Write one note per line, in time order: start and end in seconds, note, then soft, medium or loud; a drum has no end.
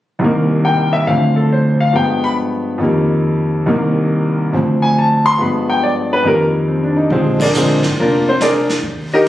0.19 1.06 C2 soft
0.19 1.07 C3 soft
0.19 1.07 D#3 soft
0.24 1.08 A#3 medium
0.65 0.92 G5 medium
0.93 1.06 E5 medium
1.07 1.93 D2 soft
1.07 1.93 D3 soft
1.07 1.91 F3 soft
1.07 1.94 C4 medium
1.07 1.35 F5 medium
1.36 1.49 A4 soft
1.53 1.79 C5 medium
1.80 1.93 F5 medium
1.93 2.79 G2 soft
1.93 2.79 F3 soft
1.93 2.79 G#3 soft
1.93 2.80 B3 medium
1.93 2.22 G5 medium
2.24 2.32 B5 medium
2.78 3.65 F2 medium
2.78 3.66 D#3 soft
2.78 3.67 G3 soft
2.83 3.67 A#3 medium
3.66 4.52 C2 soft
3.66 4.52 C3 soft
3.66 4.53 D#3 soft
3.66 4.53 A#3 medium
4.53 5.39 D2 soft
4.53 5.39 D3 soft
4.53 5.37 F3 soft
4.53 5.39 C4 medium
4.82 4.95 G#5 medium
4.98 5.25 A5 medium
5.26 5.39 C6 loud
5.38 6.25 G2 soft
5.38 6.25 F3 soft
5.38 6.25 G#3 soft
5.38 6.25 B3 medium
5.38 5.68 B5 medium
5.70 5.82 G5 medium
5.83 6.11 D5 medium
6.13 6.25 B4 medium
6.24 7.10 F2 soft
6.24 7.11 D#3 soft
6.24 7.11 G3 soft
6.24 7.11 A#3 medium
6.24 6.44 A#4 medium
6.68 6.95 C4 soft
6.83 7.05 D4 soft
6.97 7.19 D#4 soft
7.10 7.79 A#1 medium
7.10 7.37 D3 soft
7.10 7.38 F3 soft
7.10 7.38 G#3 soft
7.10 7.38 C4 medium
7.10 brush sweep soft
7.10 kick soft
7.40 7.94 D4 soft
7.40 7.94 G#4 medium
7.40 7.94 A#4 medium
7.40 7.94 D5 medium
7.40 kick medium
7.40 ride medium
7.54 7.81 D3 medium
7.54 7.81 F3 medium
7.54 7.81 G#3 medium
7.54 7.82 C4 medium
7.54 hi-hat pedal medium
7.82 7.96 G#1 medium
7.82 snare soft
7.97 8.79 F1 medium
7.97 8.27 A#3 soft
7.97 8.27 D4 medium
7.97 8.27 F4 soft
7.97 8.27 A#4 medium
7.97 brush sweep soft
7.97 kick soft
8.29 8.41 C4 medium
8.29 8.41 C5 medium
8.41 8.70 D4 medium
8.41 8.70 G#4 medium
8.41 8.69 A#4 medium
8.41 8.69 D5 medium
8.41 snare medium
8.41 hi-hat pedal medium
8.70 snare soft
8.83 9.28 D#2 medium
8.83 brush sweep soft
8.83 kick soft
9.14 9.28 D#4 medium
9.14 9.28 G4 medium
9.14 9.28 A#4 medium
9.14 9.28 D#5 medium